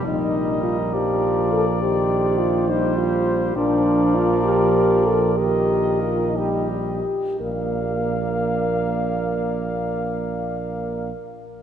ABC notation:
X:1
M:6/8
L:1/8
Q:3/8=63
K:Bb
V:1 name="Cornet"
e3 d3- | d3 c3 | d6 | e3 e2 z |
f6- | f6 |]
V:2 name="Flugelhorn"
B6 | c6 | B6 | B3 G2 z |
d6- | d6 |]
V:3 name="French horn"
E2 F G2 A | G2 F E F2 | D2 F G2 A | G2 F E G2 |
B6- | B6 |]
V:4 name="Trombone" clef=bass
G,3 F,3 | E,3 G,3 | F,6 | E,3 G,2 z |
B,6- | B,6 |]
V:5 name="Tuba" clef=bass
B,,,6- | B,,,6 | B,,,6- | B,,,4- B,,, z |
B,,,6- | B,,,6 |]